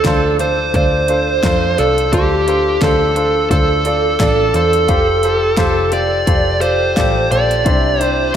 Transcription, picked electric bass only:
0.05 D2
0.74 D2
1.43 F2
1.79 C2
2.13 D2
2.82 D2
3.51 D2
4.20 A1
4.54 E2
4.89 F1
5.58 F1
6.27 F1
6.97 A1
7.32 A#1
7.66 C2

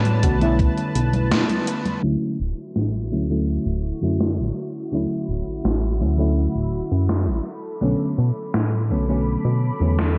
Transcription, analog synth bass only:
Already playing: A2
0.23 B1
0.95 B1
1.31 B2
2.03 D2
2.40 D1
2.76 A1
3.12 D2
3.66 D1
4.02 F#2
4.38 A1
4.92 D2
5.28 D1
5.46 A1
5.65 A1
6.01 D2
6.55 D1
6.92 F#2
7.27 A1
7.82 B1
8.18 B2
8.54 A2
8.90 B1
9.45 B2
9.81 E2

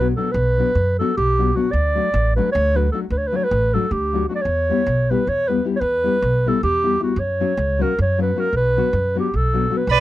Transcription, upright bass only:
Already playing: B1
0.34 B1
0.75 F#2
1.18 B1
1.73 D2
2.14 A1
2.55 D2
3.10 D2
3.51 A1
3.91 D2
4.45 E2
4.86 B1
5.27 E2
5.81 E2
6.22 B1
6.63 E2
7.16 F#2
7.57 C#2
7.99 F#2
8.53 B1
8.93 F#2
9.34 B1
9.87 B1

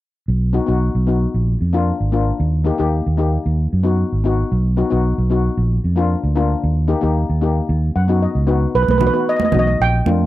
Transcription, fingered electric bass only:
0.28 B1
0.68 B1
0.95 B1
1.34 A#1
1.61 F2
2.00 G#1
2.40 D#2
2.80 D#2
3.07 D#2
3.46 D#2
3.73 F#2
4.12 G#1
4.52 B1
4.92 B1
5.18 B1
5.57 A#1
5.84 F2
6.23 D2
6.64 D#2
7.03 D#2
7.29 D#2
7.69 D#2
7.96 F#2
8.35 C#2
8.75 B1
8.88 B1
9.55 B1
9.80 A#1
10.06 F2

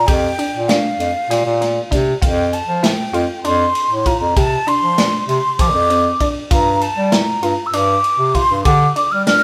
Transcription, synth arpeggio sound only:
0.08 G4
0.39 D4
0.69 D4
1.30 G4
1.61 A#3
1.91 D4
2.22 F4
2.83 E4
3.13 F4
3.45 D4
4.06 F4
4.36 G4
4.67 D4
4.98 D4
5.59 G4
5.90 C4
6.21 D4
6.51 F4
7.12 E4
7.43 F4
7.74 D4
8.35 F4
8.65 G4
8.96 D4
9.27 D4

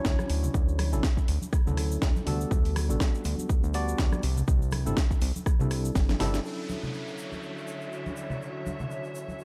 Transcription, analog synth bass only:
0.05 D2
0.30 D2
0.54 D2
0.93 A1
1.28 D2
1.67 D2
2.02 D2
2.27 D2
2.51 D2
2.90 A1
3.25 D2
3.50 D2
3.64 D2
3.99 D2
4.23 C2
4.48 C2
4.86 G1
5.22 C2
5.60 C2
5.95 G1
6.20 G1

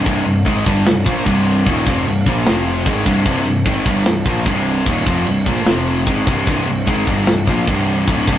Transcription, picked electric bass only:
0.07 C1
0.26 C1
0.46 G#1
0.66 G1
0.86 C1
1.06 A#1
1.26 C1
1.67 D#1
1.87 F1
2.08 C1
2.27 A#1
2.47 F1
2.86 G#1
3.06 C1
3.25 C1
3.45 C1
3.66 G#1
3.86 G1
4.07 C1
4.26 A#1
4.46 C1
4.86 D#1
5.07 F1
5.28 C1
5.47 A#1
5.68 F1
6.07 G#1
6.28 C1
6.47 C1
6.69 C1
6.87 G#1
7.07 G1
7.30 C1
7.48 A#1
7.68 C1
8.07 D1
8.28 C1

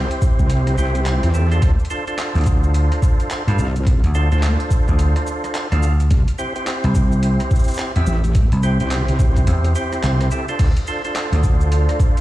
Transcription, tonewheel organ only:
Already playing: C4 E4 G4 C5
0.78 C4 E4 G4 C5
1.34 C4 E4 G4 A4
1.51 D4 F4 A4 C5
1.90 D4 F4 A4 C5
2.08 D4 F4 A4 C5
3.48 D4 F4 A4 F5
4.15 D4 F4 A4 C5
4.32 D4 F4 A4 C5
5.72 D4 F4 A4 F5
6.39 C4 E4 G4 C5
6.56 C4 E4 G4 C5
7.96 C4 E4 G4 E5
8.63 C4 E4 G4 C5
8.81 C4 E4 G4 C5
9.76 C4 E4 G4 C5
10.32 C4 E4 G4 A4
10.49 D4 F4 A4 C5
10.88 D4 F4 A4 C5
11.05 D4 F4 A4 C5

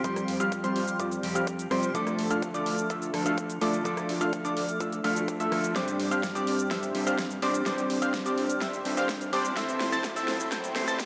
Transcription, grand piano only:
0.04 C6
0.40 F6
0.64 C6
1.00 D6
1.35 F6
1.71 C6
1.95 D6
2.30 F6
2.54 D6
2.90 E6
3.26 F6
3.62 D6
3.85 D6
4.21 F6
4.45 D6
4.81 E6
5.04 F6
5.40 E6
5.76 D6
6.11 F6
6.35 D6
6.71 E6
7.07 F6
7.42 D6
7.66 D6
8.02 F6
8.26 D6
8.62 E6
8.97 F6
9.33 D6
9.57 E6
9.93 A6
10.16 E6
10.52 G6
10.88 A6

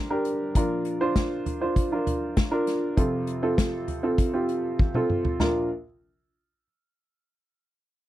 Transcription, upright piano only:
Already playing: G2 D3 D4 G4 A#4 B4 C5
0.10 D4 G4 A#4
0.56 A#2 F3 D4 F4 A#4
1.01 D4 F4 C5
1.61 D4 F4 C5
1.92 D4 F4 A#4
2.51 D4 F4 A#4
2.97 F2 C3 C4 F4 A4
3.42 C4 F4 A4
4.03 C4 F4 A4
4.33 C4 F4 G4
4.95 C4 F4 A4
5.40 A#1 D4 F4 A#4

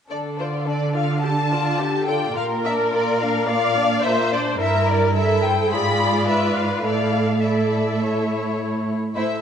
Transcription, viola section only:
1.23 G4
1.51 F4
1.79 G4
2.08 A4
2.36 A#4
3.48 D5
4.05 C5
4.61 A#4
5.17 A4
5.73 G#4
6.29 B4
6.85 A4
9.15 A4

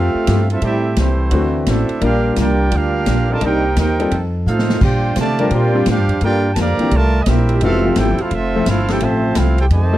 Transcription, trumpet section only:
Already playing: C4 A4 E5 F5
0.52 C4 F4 A4 E5
0.64 C4 G4 A4 E5
0.99 A3 E4 G4 C5
1.69 D4 A4 C5 E5
2.04 D4 G4 A#4 F5
2.40 F4 A#4 D5 G5
2.76 D4 G4 A#4 F5
3.32 F4 A#4 D5 A5
3.45 D#4 A#4 C5 G5
3.79 D#4 A#4 C5 G5
4.48 D#4 A4 C5 F5
4.83 F4 C5 D5 G5
5.20 G4 D5 F5 A5
5.55 F4 C5 D5 G5
5.90 D4 G4 C5 F5
6.24 F4 A#4 D5 G5
6.54 A5
6.61 G4 D5 F5 A#5
6.95 F4 A#4 D5 A5
7.22 D#5
7.27 C4 G4 A#4 E5
7.64 C4 A4 E5 F5
7.98 E4 A4 C5 G5
8.21 C4 E4 A4 F5
8.34 C4 F4 A4 E5
8.67 C4 E4 A4 F5
8.91 E4 A4 C5 G5
9.03 F4 C5 E5 A5
9.38 C4 E4 A4 F5
9.59 E4 A4 C5 G5
9.72 G4 C5 D#5 A5

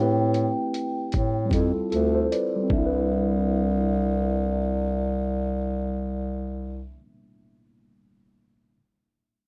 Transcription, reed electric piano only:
Already playing: A3 C4 E4
0.00 G4 B4
1.46 G3 C4
1.53 E4 F4
1.61 A4
1.92 F4 A4
2.14 A4 C5
2.32 B4 D5
2.56 G3
2.63 C4
2.71 D4
2.78 E4
2.86 B4

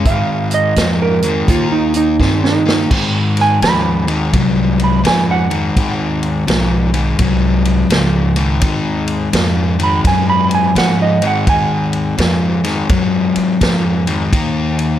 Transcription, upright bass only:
0.05 G#2
0.77 F2
1.48 D#2
2.20 G2
2.91 G#2
3.62 D#2
4.33 C2
5.05 F2
5.76 D#2
6.47 B1
7.19 C2
7.90 C#2
8.62 D#2
9.33 F2
10.04 F#2
10.75 G#2
11.47 D#2
12.18 F2
12.90 F#2
13.36 muted upright bass stroke
13.61 F2
14.33 D#2

